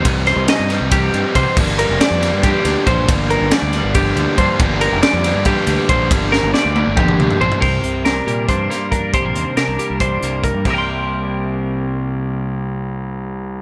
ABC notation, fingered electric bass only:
X:1
M:7/8
L:1/16
Q:1/4=139
K:Cm
V:1 name="Fingered electric bass" clef=bass
C,,3 C,, z G,,2 C,,3 G,, z C, z | G,,,3 F,,, z F,,2 G,,2 z D,, z B,,,2 | G,,,3 G,,, z D,,2 G,,,3 D,, z G,, z | G,,,3 F,,, z F,,2 G,,2 z D,, z B,,,2 |
G,,,3 G,,, z D,,2 G,,,3 D,, z B,,, z | C,,2 C,,4 B,,2 G,,2 z4 | z B,,, E,, z C, C,, z C,,3 C,,3 G,, | C,,12- C,,2- |
C,,12- C,,2 |]